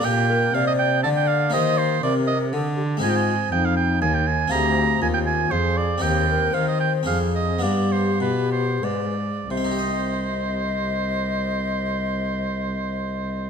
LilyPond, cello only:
\new Staff \with { instrumentName = "Cello" } { \clef bass \time 3/4 \key ees \lydian \tempo 4 = 118 bes,4 c4 d4 | ees4 c4 d4 | \key c \minor aes,4 f,4 ees,4 | d,4 ees,4 f,4 |
ees,4 ees4 f,4 | g,4 b,4 aes,4 | c,2.~ | c,2. | }